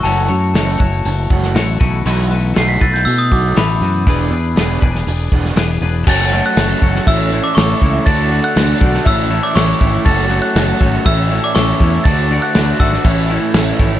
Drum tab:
CC |----------------|----------------|----------------|x---x---x---x---|
HH |o---o---o---o---|o---o---o---o---|o---o---o---o---|----------------|
SD |----o------oo---|----o--o----o---|----o--o---oo---|----o--o----o---|
BD |------o---o---o-|------o---o-----|o-----o---o-----|o-----o-o-----o-|

CC |x---x---x---x---|x---x---x---x---|x---x---x---x---|
HH |----------------|----------------|----------------|
SD |----o--o----o---|----o-------o---|----o--o----o---|
BD |o-----o-o-----o-|o-----o-o-----o-|o-----o-o-----o-|